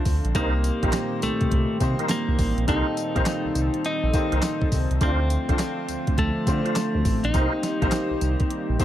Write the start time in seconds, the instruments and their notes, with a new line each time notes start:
Already playing: analog synth pad D3 F3 A3 D4 F4, grand piano A3 C4 D4 F4 C5
0.05 analog synth bass D2, kick, open hi-hat, tambourine
0.25 analog synth bass A#1, closed hi-hat
0.35 analog synth bass C2, analog synth pad A#2 D#3 G3 C4 G4, grand piano A#3 C4 D#4 G4 C5, clean electric guitar A#3, tonewheel organ D#4 A#4 C5, kick, closed hi-hat, tambourine
0.64 closed hi-hat, tambourine
0.82 analog synth bass A#1, grand piano A#2 C4 D#4 G4 A#4, tonewheel organ D#4 A#4 C5, kick, closed hi-hat
0.90 grand piano C5, snare, clap, closed hi-hat, tambourine
1.22 analog synth bass C2, clean electric guitar A3, closed hi-hat, tambourine
1.41 analog synth bass C2, kick, closed hi-hat
1.51 analog synth bass C2, kick, closed hi-hat
1.80 analog synth bass C3, grand piano A#3 C4 D#4 G4 C5, kick, closed hi-hat, tambourine
1.99 tonewheel organ D#4 A#4 C5, closed hi-hat
2.09 clean electric guitar A#3, snare, clap, closed hi-hat, tambourine
2.28 analog synth bass C2
2.39 analog synth bass A1, kick, open hi-hat, tambourine
2.57 analog synth bass A#1, closed hi-hat
2.67 analog synth bass C2, grand piano A#3 C4 D#4 G4 A4, tonewheel organ D#4 A#4 C5, clean electric guitar D#4, analog synth pad A4, kick, closed hi-hat, tambourine
2.97 closed hi-hat, tambourine
3.15 analog synth bass A#1, grand piano A#3 C4 D#4 G4 C5, tonewheel organ D#4 A#4 C5, kick, closed hi-hat
3.26 snare, clap, closed hi-hat, tambourine
3.45 analog synth bass C2
3.55 analog synth bass C2, closed hi-hat, tambourine
3.74 closed hi-hat
3.85 clean electric guitar D#4, closed hi-hat
4.03 analog synth bass A#1
4.13 grand piano A#3 C4 D#4 G4 C5, kick, closed hi-hat, tambourine
4.32 analog synth bass C2, tonewheel organ D#4 A#4 C5, closed hi-hat
4.42 snare, clap, closed hi-hat, tambourine
4.61 kick
4.72 analog synth bass C2, kick, open hi-hat, tambourine
4.91 analog synth bass C2, closed hi-hat
5.01 analog synth bass D2, analog synth pad D3 F3 A3 F4, grand piano A3 C4 D4 F4 C5, clean electric guitar C4, tonewheel organ D4 F4 C5, kick, closed hi-hat, tambourine
5.30 closed hi-hat, tambourine
5.49 analog synth bass C2, grand piano A3 C4 D4 F4 C5, tonewheel organ D4 F4 C5, kick, closed hi-hat
5.59 snare, clap, closed hi-hat, tambourine
5.89 analog synth bass D2, closed hi-hat, tambourine
6.07 analog synth bass D2, kick, closed hi-hat
6.18 analog synth bass D2, clean electric guitar A3, kick, closed hi-hat
6.47 analog synth bass D3, grand piano A3 C4 D4 F4 C5, kick, closed hi-hat, tambourine
6.65 tonewheel organ D4 F4 C5, closed hi-hat
6.76 snare, clap, closed hi-hat, tambourine
6.95 analog synth bass D2
7.05 analog synth bass A1, kick, open hi-hat, tambourine
7.24 analog synth bass A#1, clean electric guitar D#4, closed hi-hat
7.34 analog synth bass C2, analog synth pad D#3 G3 A#3 G4, grand piano A#3 C4 D#4 G4 C5, tonewheel organ D#4 A#4 C5, kick, closed hi-hat, tambourine
7.63 snare, closed hi-hat, tambourine
7.82 analog synth bass A#1, grand piano A#3 C4 D#4 G4 C5, tonewheel organ D#4 A#4 C5, kick, closed hi-hat
7.92 snare, clap, closed hi-hat, tambourine
8.11 analog synth bass C2
8.21 analog synth bass C2, closed hi-hat, tambourine
8.40 kick, closed hi-hat
8.50 closed hi-hat
8.69 analog synth bass A#1
8.79 grand piano A#3 C4 D#4 G4 C5, kick, closed hi-hat, tambourine